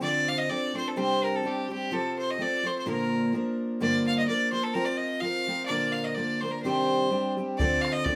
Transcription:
0.00 steel-string acoustic guitar D3 F3 C4 D4 A4, fiddle D5
0.28 fiddle F5
0.38 fiddle D#5
0.49 steel-string acoustic guitar F3 C4 D4 A4, fiddle D5
0.74 steel-string acoustic guitar F3 C4 D4 A4, fiddle C5
0.88 fiddle A4
0.96 steel-string acoustic guitar C3 G3 C4 D4 G4, fiddle C5
1.24 fiddle A#4
1.36 fiddle A4
1.43 steel-string acoustic guitar G3 C4 D4 G4
1.47 fiddle G4
1.69 steel-string acoustic guitar G3 C4 D4 G4, fiddle G4
1.91 steel-string acoustic guitar C3 F3 C4 F4 A4, fiddle A4
2.18 fiddle C5
2.30 fiddle D#5
2.38 steel-string acoustic guitar F3 C4 F4 A4, fiddle D5
2.63 steel-string acoustic guitar F3 C4 F4 A4, fiddle C5
2.78 fiddle C5
2.86 steel-string acoustic guitar A#2 D3 F3 A#3 D4 A#4, fiddle A#4
3.33 steel-string acoustic guitar F3 A#3 D4 A#4
3.80 steel-string acoustic guitar G2 D3 F3 A#3 D4 A#4, fiddle D5
4.07 fiddle F5
4.18 fiddle D#5
4.27 steel-string acoustic guitar F3 A#3 D4 A#4, fiddle D5
4.52 steel-string acoustic guitar F3 A#3 D4 A#4, fiddle C5
4.63 fiddle A4
4.74 steel-string acoustic guitar F3 C4 F4 A#4, fiddle A#4
4.85 fiddle D5
4.97 fiddle D#5
5.21 steel-string acoustic guitar F3 C4 F4 A#4, fiddle F5
5.47 steel-string acoustic guitar F3 C4 F4 A#4
5.66 steel-string acoustic guitar A#2 D3, fiddle D5
5.70 steel-string acoustic guitar F3 A#3 D4 A#4
5.92 fiddle F5
6.04 fiddle D#5
6.15 steel-string acoustic guitar F3 A#3 D4, fiddle D5
6.19 steel-string acoustic guitar A#4
6.41 steel-string acoustic guitar F3 A#3 D4 A#4, fiddle C5
6.51 fiddle A#4
6.62 steel-string acoustic guitar C3 D#3 G3 C4 D4 G4, fiddle C5
7.10 steel-string acoustic guitar G3 C4 D4 G4
7.37 steel-string acoustic guitar G3 C4 D4 G4
7.58 steel-string acoustic guitar D3 F3 C4 D4 A4, fiddle D5, bodhran
7.81 fiddle F5, bodhran
7.92 fiddle D#5
8.04 steel-string acoustic guitar F3 C4 D4 A4, fiddle D5, bodhran

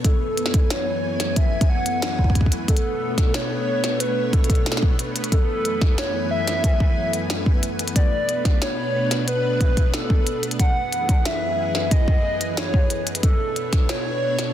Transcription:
Already playing: synth texture B3 B4
0.05 string machine F#2 E3 A3 G#5, soft synth lead A4, kick, closed hi-hat
0.37 closed hi-hat
0.46 snare
0.54 kick, closed hi-hat
0.70 soft synth lead C#5, snare, closed hi-hat
1.20 snare, closed hi-hat
1.36 soft synth lead E5, kick, closed hi-hat
1.61 kick, closed hi-hat
1.69 soft synth lead F#5
1.86 closed hi-hat
2.02 snare, closed hi-hat
2.19 kick
2.24 kick
2.30 kick
2.35 kick, closed hi-hat
2.41 kick
2.46 kick
2.52 closed hi-hat
2.68 string machine B2 D4 C#5, soft synth lead A4, kick, closed hi-hat
2.77 closed hi-hat
3.18 kick, snare, closed hi-hat
3.34 soft synth lead C#5, snare, closed hi-hat
3.84 snare, closed hi-hat
4.00 soft synth lead B4, closed hi-hat
4.33 soft synth lead A4, kick, closed hi-hat
4.44 closed hi-hat
4.50 kick, closed hi-hat
4.55 closed hi-hat
4.66 snare, closed hi-hat
4.72 snare
4.77 snare
4.83 kick
4.99 closed hi-hat
5.16 closed hi-hat
5.24 closed hi-hat
5.32 string machine F#2 E3 G#5, soft synth lead A4, kick, closed hi-hat
5.65 closed hi-hat
5.81 kick, snare
5.98 soft synth lead C#5, snare, closed hi-hat
6.31 soft synth lead E5
6.47 snare, closed hi-hat
6.64 kick, closed hi-hat
6.80 kick
7.13 closed hi-hat
7.30 snare, closed hi-hat
7.46 kick
7.63 closed hi-hat
7.79 closed hi-hat
7.88 closed hi-hat
7.96 string machine B2 D4 B4, soft synth lead D5, kick, closed hi-hat
8.29 closed hi-hat
8.45 kick, snare, closed hi-hat
8.62 soft synth lead C#5, snare, closed hi-hat
9.11 snare, closed hi-hat
9.28 soft synth lead B4, closed hi-hat
9.61 kick, closed hi-hat
9.77 kick, closed hi-hat
9.94 soft synth lead A4, snare, closed hi-hat
10.10 kick
10.27 closed hi-hat
10.43 closed hi-hat
10.51 closed hi-hat
10.59 string machine F#2 E3 G#4, soft synth lead F#5, kick, closed hi-hat
10.93 closed hi-hat
11.09 kick, closed hi-hat
11.25 soft synth lead E5, snare, closed hi-hat
11.75 snare
11.91 soft synth lead D#5, kick, closed hi-hat
12.08 kick
12.41 closed hi-hat
12.57 soft synth lead C#5, snare, closed hi-hat
12.74 kick
12.90 closed hi-hat
13.07 closed hi-hat
13.15 closed hi-hat
13.23 string machine B2 D4 C#5, soft synth lead A4, kick, closed hi-hat
13.56 closed hi-hat
13.73 kick, snare, closed hi-hat
13.89 soft synth lead C#5, snare, closed hi-hat
14.39 snare, closed hi-hat

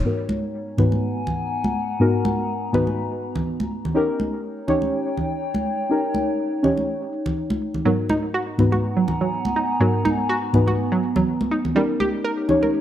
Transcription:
Already playing: ambient pad D#4 C#5
0.04 synth stab G#2 B3 D#4 F#4 A#4, ambient pad B3
0.18 ambient pad A#5
0.29 high conga, cabasa
0.43 cabasa
0.49 ambient pad F#5
0.54 cabasa
0.68 ambient pad G#5, cabasa
0.77 synth stab G#2 B3 D#4 F#4 B4, low conga
0.92 high conga
1.03 cabasa
1.17 cabasa
1.27 low conga, cabasa
1.52 cabasa
1.64 high conga
1.76 cabasa
1.90 cabasa
1.99 synth stab G#2 B3 D#4 F#4 A#4
2.25 high conga
2.49 cabasa
2.63 cabasa
2.72 synth stab G#2 B3 D#4 F#4 B4, low conga
2.87 high conga
2.98 cabasa
3.12 cabasa
3.22 cabasa
3.35 low conga
3.47 cabasa
3.60 high conga
3.71 cabasa
3.85 low conga, cabasa
3.94 synth stab C#4 D#4 G4 A#4, ambient pad D#4
4.09 ambient pad C#5
4.20 high conga, cabasa
4.34 cabasa
4.43 ambient pad G5, cabasa
4.58 cabasa
4.67 synth stab C#4 D#4 G4 C#5, low conga
4.82 high conga
4.93 cabasa
5.07 cabasa
5.17 low conga, cabasa
5.31 cabasa
5.42 cabasa
5.54 high conga
5.66 cabasa
5.80 cabasa
5.89 synth stab C#4 D#4 G4 A#4, cabasa
6.04 cabasa
6.14 high conga, cabasa
6.29 cabasa
6.40 cabasa
6.53 cabasa
6.63 synth stab C#4 D#4 G4 C#5, low conga, cabasa
6.77 high conga, cabasa
6.88 cabasa
7.02 cabasa
7.13 cabasa
7.26 low conga, cabasa
7.37 cabasa
7.50 high conga
7.62 cabasa
7.74 low conga, cabasa
7.85 synth stab G#2 B3 D#4 F#4 A#4, synth arpeggio sound F#3, ambient pad B3
8.02 ambient pad A#5
8.10 synth arpeggio sound D#4, high conga
8.24 cabasa
8.32 synth arpeggio sound F#4, ambient pad F#5
8.45 ambient pad G#5, cabasa
8.58 synth stab G#2 B3 D#4 F#4 B4, low conga, cabasa
8.72 synth arpeggio sound F#4, high conga
8.83 cabasa
8.97 synth arpeggio sound F#3, cabasa
9.08 low conga, cabasa
9.21 synth arpeggio sound F#3, cabasa
9.32 cabasa
9.45 high conga
9.56 synth arpeggio sound D#4, cabasa
9.70 cabasa
9.80 synth stab G#2 B3 D#4 F#4 A#4, synth arpeggio sound F#3
10.05 synth arpeggio sound D#4, high conga
10.19 cabasa
10.29 synth arpeggio sound F#4
10.53 synth stab G#2 B3 D#4 F#4 B4, low conga, cabasa
10.67 synth arpeggio sound F#4, high conga
10.79 cabasa
10.92 synth arpeggio sound F#3, cabasa
11.03 cabasa
11.16 synth arpeggio sound F#3, low conga
11.27 cabasa
11.41 high conga
11.51 synth arpeggio sound D#4, cabasa
11.65 low conga, cabasa
11.75 synth arpeggio sound G3, synth stab C#4 D#4 G4 A#4, ambient pad D#4
11.97 synth arpeggio sound G4, ambient pad C#5, high conga, cabasa
12.14 cabasa
12.24 synth arpeggio sound A#4
12.39 ambient pad G5, cabasa
12.48 synth stab C#4 D#4 G4 C#5, low conga, cabasa
12.63 synth arpeggio sound A#4, high conga, cabasa
12.74 cabasa

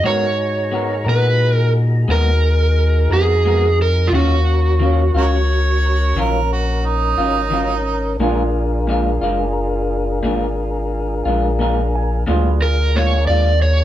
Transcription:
0.03 sub bass G#2, grand piano G#3 F#4 C#5, clean electric guitar G#3 B3 F#4 A#4, tonewheel organ D#4 F#4 G#4 A#5, electric slide guitar C#5
0.72 clean electric guitar G#3 B3 F#4 A#4
1.05 sub bass A#2, clean electric guitar B3 F#4 A#4
1.09 electric slide guitar B4
1.53 electric slide guitar A#4
2.08 sub bass D#2, clean electric guitar G#3 B3 F#4 A#4, electric slide guitar A#4
3.09 sub bass F2, clean electric guitar F#4 A#4, electric slide guitar G#4
3.13 clean electric guitar B3
3.45 clean electric guitar G#3 B3 F#4 A#4
3.82 electric slide guitar A#4
4.07 sub bass D#2, electric slide guitar F4
4.12 clean electric guitar D#3 F#3 C#4 F4, grand piano C#4 F#4 F5, tonewheel organ C#4 A#4, electric slide guitar F#4
4.80 clean electric guitar D#3 F#3 C#4 F4
5.14 sub bass C#2, clean electric guitar F#3 C#4 F4, harmonica F#4 A#4 C#5
6.15 sub bass A#1, clean electric guitar D#3 F#3 C#4 F4
6.21 harmonica A#4
6.53 harmonica F#4
6.86 harmonica D#4
7.17 sub bass G#1, clean electric guitar C#4 F4
7.21 clean electric guitar F#3
7.50 clean electric guitar D#3 F#3 C#4 F4
8.19 sub bass A#1, clean electric guitar A#2 G#3 D4 F4, tonewheel organ D4 F4 G#4 A#4, grand piano D4 F4 G#4
8.87 clean electric guitar A#2 G#3 D4 F4
9.22 sub bass F#1, clean electric guitar G#3 D4 F4
10.23 sub bass G#1, clean electric guitar A#2 G#3 D4 F4
11.25 sub bass A#1, clean electric guitar G#3 D4 F4
11.59 clean electric guitar A#2 G#3 D4 F4, grand piano A#5
11.95 grand piano G#5
12.27 sub bass D2, clean electric guitar A#2 G#3 D4 F4, tonewheel organ F#3 A3 D4 B4, grand piano D4 F4 G#4
12.62 tonewheel organ D4 F4 G#4 A#4, electric slide guitar A#4
12.96 clean electric guitar A#2 G#3 D4 F4, electric slide guitar C#5
13.27 sub bass D#2, clean electric guitar F4, electric slide guitar D5
13.32 clean electric guitar G#3 D4
13.62 electric slide guitar C#5

